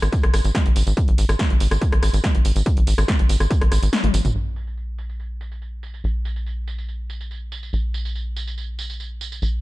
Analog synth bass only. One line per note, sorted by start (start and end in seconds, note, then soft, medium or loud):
0.02 0.09 G#1 medium
0.23 0.30 G#1 medium
0.34 0.41 G#1 loud
0.45 0.51 G#1 medium
0.66 0.72 G#1 medium
0.76 0.83 G#1 loud
0.87 0.93 G#1 medium
1.08 1.14 G#1 medium
1.18 1.25 G#1 loud
1.29 1.35 G#1 medium
1.50 1.57 G#1 medium
1.60 1.67 G#1 loud
1.71 1.78 G#1 medium
1.92 1.99 G#1 medium
2.03 2.10 G#1 loud
2.13 2.20 G#1 medium
2.35 2.41 G#1 medium
2.45 2.52 G#1 loud
2.56 2.62 G#1 medium
2.77 2.83 G#1 medium
2.87 2.94 G#1 loud
2.98 3.05 G#1 loud
3.19 3.26 G#1 medium
3.29 3.36 G#1 loud
3.40 3.47 G#1 medium
3.61 3.68 G#1 medium
3.72 3.79 G#1 loud
3.83 3.89 G#1 medium
4.04 4.10 G#1 medium
4.14 4.21 G#1 loud
4.25 4.31 G#1 medium
4.35 6.02 A#1 medium
6.04 7.71 A#1 medium
7.73 9.40 A#1 medium
9.42 9.61 A#1 medium